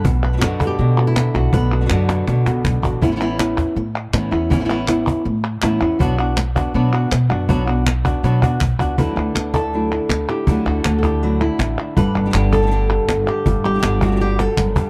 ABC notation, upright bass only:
X:1
M:4/4
L:1/16
Q:1/4=161
K:Bm
V:1 name="Upright bass" clef=bass
B,,,4 F,,4 B,,6 B,,,2 | B,,,4 F,,4 B,,2 C,,2 B,,,2 A,,,2 | A,,,8 A,,4 A,,2 E,,2 | A,,,8 A,,4 A,,2 E,,2 |
B,,,8 B,,4 B,,2 F,,2 | B,,,8 B,,4 B,,,2 C,,2 | D,, z D,,2 D,,8 D,,2 z2 | D,, z D,,2 D,,8 A,,,2 z2 |
G,,, z G,,,2 G,,,8 G,,,2 z2 | G,,, z G,,,2 G,,,8 G,,,2 z2 |]